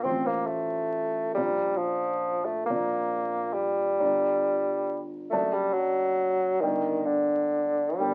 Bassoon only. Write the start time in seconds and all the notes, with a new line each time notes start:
0.03 C4
0.26 A#3
0.46 A3
1.34 G3
1.77 F3
2.45 A3
2.66 A#3
3.53 G3
5.30 A3
5.53 G3
5.73 F#3
6.61 D#3
7.06 D3
7.97 G3